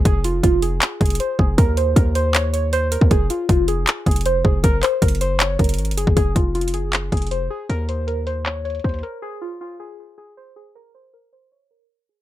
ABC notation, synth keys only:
X:1
M:4/4
L:1/8
Q:1/4=157
K:Fphr
V:1 name="Synth keys"
A F F A2 A c A | B c B c d d c B | A F F A2 A c A | B c B c d B2 A |
A F F A2 A c A | B c B c d d c B | A F F A2 A c A | B c B c d B2 A |]